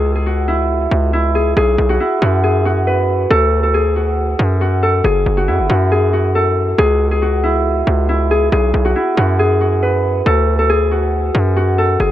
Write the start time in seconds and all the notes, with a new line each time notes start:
Already playing: C#2 E4 F#4 G#4
0.15 G#4
0.26 F#4
0.48 E4
0.91 C#2
1.13 E4
1.35 G#4
1.57 B1 G#4
1.78 B1
1.89 F#4
2.00 E4
2.22 F#2 F#4
2.44 G#4
2.65 F#4
2.87 B4
3.31 D2 A4
3.63 A4
3.74 G#4
3.96 F#4
4.39 F#2
4.61 F#4
4.83 A4
5.04 F#1 G#4
5.26 F#1
5.37 F#4
5.48 F#2 E4
5.59 F#1
5.70 F#2 F#4
5.92 G#4
6.13 F#4
6.35 A4
6.78 C#2 G#4
7.11 G#4
7.22 F#4
7.44 E4
7.87 C#2
8.09 E4
8.31 G#4
8.52 B1 G#4
8.74 B1
8.85 F#4
8.96 E4
9.17 F#2 F#4
9.39 G#4
9.61 F#4
9.83 B4
10.26 D2 A4
10.59 A4
10.70 G#4
10.91 F#4
11.35 F#2
11.56 F#4
11.78 A4
12.00 F#1 G#4